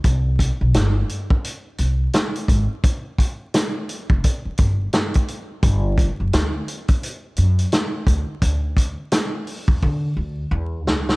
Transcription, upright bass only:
X:1
M:4/4
L:1/16
Q:"Swing 16ths" 1/4=86
K:Clyd
V:1 name="Upright bass" clef=bass
C,,3 B,,, G,,,2 z4 C,,2 z2 _A,,, z | z6 z =F,,, z2 G,,,2 z4 | G,,,3 F,,, D,,2 z4 F,,2 z2 D,, z | D,,4 z3 E,, D,2 D,,2 E,,2 _D,,2 |]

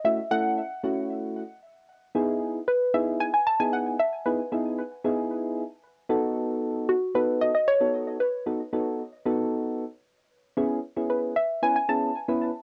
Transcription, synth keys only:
X:1
M:4/4
L:1/16
Q:1/4=114
K:C#m
V:1 name="Synth keys"
[A,CEF] z [A,CEA]2 z2 [A,CEF]4 z6 | [B,DEG]3 z3 [B,DEG]3 z2 [B,DEG]3 z2 | [B,DEG] z [B,DEG]2 z2 [B,DEG]4 z4 [B,DFA]2- | [B,DFA]4 z2 [B,DFA]3 z2 [B,DFA]3 z2 |
[B,DFA] z [B,DFA]2 z2 [B,DFA]4 z6 | [B,CEG]2 z [B,CEG]3 z2 [B,CEB] z [B,CEG]2 z [B,CEB]2 z |]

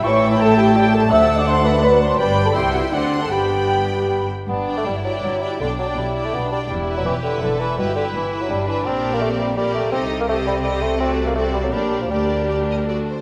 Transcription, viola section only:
X:1
M:3/4
L:1/8
Q:1/4=165
K:G
V:1 name="Viola section"
E6 | D6 | D2 E2 D2 | D4- D z |
z [Dd]2 [Dd]2 [Dd] | [Dd] [Dd]2 [Dd]2 [Dd] | z [EB]2 [EB]2 [EB] | [EB] [EB]2 [EB]2 [EB] |
[K:Gm] [GB]4 [GB]2 | [GA]2 [GA]2 [GA]2 | [^FA]2 [FA]2 [GB]2 | [GB]4 [^FA] z |]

